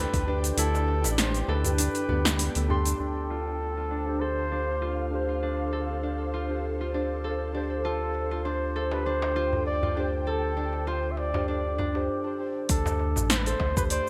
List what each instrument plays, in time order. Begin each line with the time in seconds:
Already playing: synth keys D4 G4, harp D4 E4 A4, ambient pad D4 D5 G5, muted trumpet B4
0.13 analog synth bass D2, kick, open hi-hat, darbuka dum, shaker
0.25 synth keys D4 G4, harp D4
0.29 synth keys B4
0.44 open hi-hat, shaker
0.57 analog synth bass D2, harp E4, muted trumpet A4, open hi-hat, shaker
0.75 darbuka tek, shaker
0.88 darbuka ka
1.04 analog synth bass A1, harp E4, open hi-hat, darbuka ka, shaker
1.12 muted trumpet D5
1.18 harp D4, muted trumpet C5, snare, open hi-hat, darbuka ka, shaker
1.34 open hi-hat, shaker
1.42 muted trumpet C5
1.48 analog synth bass D2, harp A4, muted trumpet B4, darbuka ka, darbuka tek
1.64 synth keys D4 G4 B4, open hi-hat, darbuka dum, shaker
1.78 harp D4, open hi-hat, shaker
1.95 open hi-hat, shaker
2.08 analog synth bass D2, harp B3, synth keys D4 G4 B4, darbuka dum
2.25 snare, open hi-hat, darbuka tek, shaker
2.39 open hi-hat, shaker
2.55 analog synth bass D2, harp A3, open hi-hat, darbuka tek, shaker
2.68 synth keys D4 G4 C6, harp A4, darbuka dum
2.85 harp D4, open hi-hat, shaker
2.99 analog synth bass D2, harp D4, muted trumpet A4
3.05 ambient pad C5
3.24 ambient pad A4
3.30 harp F4, ambient pad F5
3.77 harp F4
3.91 harp D4
4.06 synth keys D4 G4 C5
4.20 harp A4, muted trumpet C5
4.51 synth keys D4 G4 C5, harp D4
4.82 harp F4
5.11 synth keys D4 G4
5.15 synth keys C5
5.29 harp F4
5.43 harp D4
5.73 harp A4
6.03 harp D4
6.34 harp F4
6.49 synth keys D4 G4 C5
6.81 harp F4
6.93 synth keys D4 G4 C5, harp D4
7.24 harp A4
7.53 synth keys D4 G4, harp D4
7.57 synth keys C5
7.85 harp F4, muted trumpet A4
8.15 darbuka ka
8.31 harp F4, darbuka ka
8.36 ambient pad G5
8.45 harp D4, muted trumpet C5, darbuka ka
8.76 harp A4, darbuka ka
8.91 synth keys D4 G4 C5, muted trumpet B4, darbuka tek
9.06 harp D4, muted trumpet C5
9.22 darbuka tek
9.35 synth keys D4 G4 C5, harp F4, darbuka ka
9.53 darbuka dum
9.66 muted trumpet D5
9.83 harp F4, darbuka dum
9.95 synth keys D4 G4, harp D4
9.99 synth keys C5
10.27 harp A4, muted trumpet A4
10.57 harp D4, darbuka ka
10.73 darbuka ka
10.87 harp F4, muted trumpet C5, darbuka ka
11.12 muted trumpet E5
11.17 muted trumpet D5, darbuka ka
11.34 synth keys D4 G4 C5, harp F4, darbuka tek, darbuka dum
11.48 harp D4, muted trumpet D5
11.78 harp D4, darbuka dum
11.94 synth keys D4 G4 C5, darbuka tek
12.24 synth keys D4 G4 C5
12.38 synth keys D4 G4 C5
12.69 analog synth bass D2, ambient pad D4, harp D4, muted trumpet A4, kick, open hi-hat, shaker
12.80 ambient pad E5
12.85 darbuka tek, darbuka dum, shaker
12.99 darbuka ka
13.14 analog synth bass A1, ambient pad F5, darbuka ka, darbuka dum, shaker
13.30 muted trumpet C5, snare, open hi-hat, darbuka ka, shaker
13.38 muted trumpet B4
13.46 harp A4, muted trumpet C5, open hi-hat, shaker
13.60 analog synth bass D2, harp A3, kick, darbuka ka, darbuka tek
13.77 synth keys D4 G4 C5, muted trumpet B4, harp C5, kick, darbuka dum, shaker
13.90 muted trumpet C5, harp D5, open hi-hat, shaker